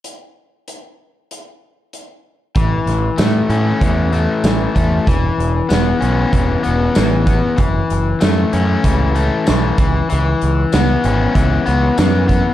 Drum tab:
HH |x-x-x-x-|xxxxxxxx|xxxxxxxx|xxxxxxxx|
TB |--------|--x---x-|--x---x-|--x---x-|
SD |--------|-oo---o-|--o---o-|--o---o-|
BD |--------|o---o--o|o---o--o|o---o--o|

HH |xxxxxxxx|
TB |--x---x-|
SD |--o---o-|
BD |----o--o|